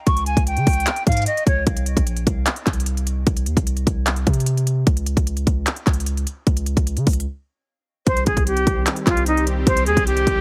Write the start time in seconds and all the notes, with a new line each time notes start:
0.07 C#2 C#6, kick, closed hi-hat
0.17 closed hi-hat
0.26 G#5, closed hi-hat
0.37 C#2, kick, closed hi-hat
0.47 G5, closed hi-hat
0.57 C#3, closed hi-hat
0.67 C#2, kick, closed hi-hat, open hi-hat
0.73 closed hi-hat
0.80 closed hi-hat
0.86 clap, closed hi-hat
0.96 closed hi-hat
1.07 G#2 F5, kick, closed hi-hat
1.12 closed hi-hat
1.17 closed hi-hat
1.22 closed hi-hat
1.26 D#5, closed hi-hat
1.37 closed hi-hat
1.47 C#2 C#5, kick, closed hi-hat
1.67 C2, kick, closed hi-hat
1.77 closed hi-hat
1.86 closed hi-hat
1.97 A#1, kick, closed hi-hat
2.07 closed hi-hat
2.17 closed hi-hat
2.27 C2, kick, closed hi-hat
2.46 clap, closed hi-hat
2.56 closed hi-hat
2.67 C2, kick, clap, closed hi-hat
2.73 closed hi-hat
2.80 closed hi-hat
2.86 closed hi-hat
2.97 closed hi-hat
3.07 closed hi-hat
3.27 C2, kick, closed hi-hat
3.37 closed hi-hat
3.46 D#2, closed hi-hat
3.57 C2, kick, closed hi-hat
3.67 closed hi-hat
3.77 closed hi-hat
3.87 C2, kick, closed hi-hat
4.06 clap, closed hi-hat
4.16 closed hi-hat
4.27 C3, kick, closed hi-hat
4.33 closed hi-hat
4.40 closed hi-hat
4.46 closed hi-hat
4.57 closed hi-hat
4.67 closed hi-hat
4.87 C#2, kick, closed hi-hat
4.97 closed hi-hat
5.06 closed hi-hat
5.17 C#2, kick, closed hi-hat
5.27 closed hi-hat
5.37 closed hi-hat
5.47 C#2, kick, closed hi-hat
5.67 clap, closed hi-hat
5.76 closed hi-hat
5.87 C#2, kick, clap, closed hi-hat
5.93 closed hi-hat
6.00 closed hi-hat
6.06 closed hi-hat
6.17 closed hi-hat
6.27 closed hi-hat
6.47 C#2, kick, closed hi-hat
6.57 closed hi-hat
6.66 closed hi-hat
6.77 C#2, kick, closed hi-hat
6.87 closed hi-hat
6.97 C#3, closed hi-hat
7.07 C#2, kick, closed hi-hat, open hi-hat
7.13 closed hi-hat
7.20 closed hi-hat
8.07 C2 D#3 G3 C4 G4 C5, kick, closed hi-hat
8.17 closed hi-hat
8.26 C2 G#4, kick, closed hi-hat
8.37 kick, closed hi-hat
8.47 G4, closed hi-hat
8.57 closed hi-hat
8.67 C2, kick, closed hi-hat
8.86 clap, closed hi-hat
8.96 closed hi-hat
9.07 C2 F4, kick, clap, closed hi-hat
9.17 closed hi-hat
9.26 D#4, closed hi-hat
9.37 closed hi-hat
9.47 closed hi-hat
9.67 C2 C5, kick, closed hi-hat
9.77 closed hi-hat
9.86 D#2 G#4, closed hi-hat
9.97 C2, kick, closed hi-hat
10.07 G4, closed hi-hat
10.17 closed hi-hat
10.27 C2, kick, closed hi-hat